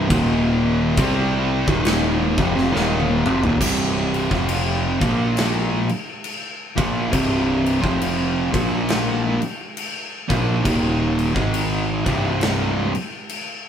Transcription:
0.09 D#1 D#2 A#2 D#3, kick, crash
0.97 C2 C3 G3 C4, kick, crash
1.68 D#1 D#2 A#2 D#3, kick
1.85 snare, crash
2.37 F1 F2 C3, kick
2.55 F1 F2 C3, snare
2.72 D#1 D#2 A#2 D#3, snare
3.00 high tom
3.25 F1 F2 C3, mid tom
3.43 D#1 D#2 A#2, floor tom
3.60 C1 C2 G2 C3, kick, crash
4.14 crash
4.30 F1 F2 C3 F3, kick, snare
4.49 crash
5.01 A#1 A#2 F3 A#3, kick, crash
5.37 snare, crash
5.89 crash
6.24 crash
6.76 A#1 A#2 F3 A#3, kick, crash
7.10 C1 C2 G2 C3, kick, crash
7.66 crash
7.81 F1 F2 C3 F3, kick
8.02 crash
8.51 A#1 A#2 F3 A#3, kick, crash
8.89 snare, crash
9.42 crash
9.77 crash
10.29 A#1 A#2 F3 A#3, kick, crash
10.64 D#1 D#2 A#2 D#3, kick, crash
11.19 crash
11.34 G#1 G#2 D#3 G#3, kick
11.54 crash
12.05 C1 C2 G2 C3, kick, crash
12.41 snare, crash
12.95 crash
13.29 crash

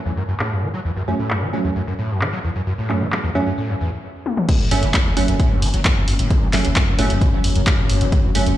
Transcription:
0.06 E2
0.17 F#2
0.28 F#2
0.40 A2, clap
0.51 F#2
0.62 F#3
0.74 F#3
0.85 E2
0.96 F#2
1.08 F#2 F#3 A3 C#4
1.19 A2
1.30 F#2, clap
1.42 F#3
1.53 F#3 A3 C#4
1.65 E2
1.76 F#2
1.87 F#2
1.99 A2
2.10 F#2
2.21 F#3, clap
2.33 F#3
2.44 E2
2.55 F#2
2.67 F#2
2.78 A2
2.90 F#2 F#3 A3 C#4, clap
3.01 F#3
3.12 F#3, clap
3.24 E2
3.35 F#2 F#3 A3 C#4
3.46 F#2
3.58 A2
3.69 F#2
3.81 E2
4.26 high tom
4.37 mid tom
4.49 F#2 F#3 C#4, kick, closed hi-hat, crash
4.60 A2
4.71 F#1 F#2 F#3 A3 C#4, open hi-hat
4.83 F#1 F#3, closed hi-hat
4.94 F#3, kick, clap, closed hi-hat
5.05 E2
5.17 F#1 F#2 F#3 A3 C#4, open hi-hat
5.28 F#1 F#2, closed hi-hat
5.40 A2, kick, closed hi-hat
5.51 F#2
5.62 F#1 F#3, open hi-hat
5.74 F#1 F#3, closed hi-hat
5.85 E2, kick, clap, closed hi-hat
5.96 F#2
6.08 F#1 F#2, open hi-hat
6.19 F#1 A2, closed hi-hat
6.30 F#2, kick, closed hi-hat
6.42 F#3
6.53 F#1 F#3 A3 C#4, clap, open hi-hat
6.65 F#1 E2, closed hi-hat
6.76 F#2, kick, clap, closed hi-hat
6.87 F#2
6.99 F#1 A2 F#3 A3 C#4, open hi-hat
7.10 F#1 F#2, closed hi-hat
7.21 F#3, kick, closed hi-hat
7.33 F#3
7.44 F#1 E2, open hi-hat
7.55 F#1 F#2, closed hi-hat
7.67 F#2, kick, clap, closed hi-hat
7.78 A2
7.90 F#1 F#2, open hi-hat
8.01 F#1 F#3, closed hi-hat
8.12 F#3, kick, closed hi-hat
8.24 E2
8.35 F#1 F#2 F#3 A3 C#4, open hi-hat
8.46 F#1 F#2, closed hi-hat

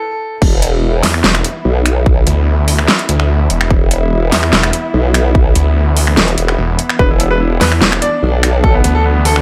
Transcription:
Already playing: A4
0.42 E1 E3 B3 E4, kick, crash
0.62 closed hi-hat
1.03 E2, snare, open hi-hat
1.14 finger snap
1.24 E1, snare
1.35 finger snap, closed hi-hat
1.44 closed hi-hat
1.65 B1
1.86 finger snap, closed hi-hat
2.06 kick
2.27 D2, closed hi-hat
2.68 open hi-hat
2.79 finger snap
2.88 snare
2.99 closed hi-hat
3.09 D2, closed hi-hat
3.20 finger snap
3.50 E1, closed hi-hat
3.61 finger snap
3.71 E1, kick
3.91 closed hi-hat
4.32 E2, snare, open hi-hat
4.43 finger snap
4.53 E1, snare
4.63 finger snap, closed hi-hat
4.73 closed hi-hat
4.94 B1
5.14 finger snap, closed hi-hat
5.35 kick
5.55 D2, closed hi-hat
5.97 open hi-hat
6.07 finger snap
6.17 E1, snare
6.28 closed hi-hat
6.38 E1, closed hi-hat
6.48 finger snap
6.58 E1
6.79 closed hi-hat
6.89 finger snap
6.99 E1 D4 B4, kick
7.10 E4
7.20 E4, closed hi-hat
7.31 B4
7.40 E4
7.51 E4
7.61 E2 B4, snare, open hi-hat
7.72 E4, finger snap
7.81 E1 E4, snare
7.92 E4, finger snap, closed hi-hat
8.02 D5, closed hi-hat
8.23 B1
8.43 finger snap, closed hi-hat
8.64 A4, kick
8.74 B3
8.84 D2 B3, closed hi-hat
8.95 A4
9.05 B3
9.15 B3
9.25 A4, open hi-hat
9.36 B3, finger snap

